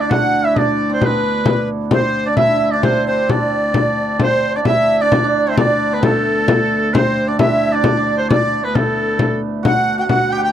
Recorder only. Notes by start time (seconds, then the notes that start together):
0.00 D5
0.10 F#5
0.45 E5
0.56 D5
1.02 B4
1.48 B4
1.93 C5
2.29 D5
2.39 E5
2.72 D5
2.85 C5
3.06 C5
3.30 D5
4.21 C5
4.55 D5
4.64 E5
5.00 D5
5.50 E5
5.56 D5
6.02 A4
6.93 C5
7.28 D5
7.40 E5
7.75 D5
8.20 C5
8.31 D5
8.65 B4
8.77 A4
9.67 F#5
9.98 F#5 G5
10.03 F#5
10.09 F#5
10.32 G5
10.44 G5